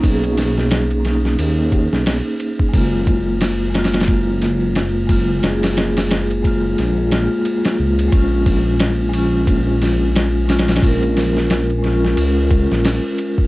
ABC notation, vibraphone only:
X:1
M:4/4
L:1/8
Q:"Swing 16ths" 1/4=89
K:Bbphr
V:1 name="Vibraphone"
[^A,^C_A]3 [^A,C^D]4- [A,CD] | [A,B,F]3 [A,B,F]4 [A,B,F] | [A,B,A]3 [A,B,F]2 [A,B,F] z2 | [A,DF]3 [A,DF]4 [A,DF] |
[A,DB]3 [A,DF]4- [A,DF] |]